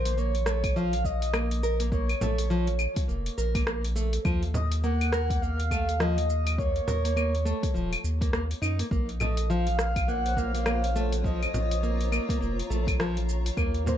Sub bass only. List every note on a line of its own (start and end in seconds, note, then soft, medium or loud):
0.00 2.15 A#1 loud
2.21 2.87 A#1 medium
3.08 3.30 F1 loud
3.38 4.19 A#1 loud
4.25 6.81 D#2 loud
6.88 7.54 D#2 loud
7.75 7.96 D#1 loud
8.04 8.32 D#2 loud
8.33 8.54 D#2 medium
8.62 8.83 F#2 medium
8.91 11.47 A#1 loud
11.54 12.20 A#1 loud
12.41 12.62 F1 loud
12.70 13.51 A#1 loud
13.57 13.98 D#2 loud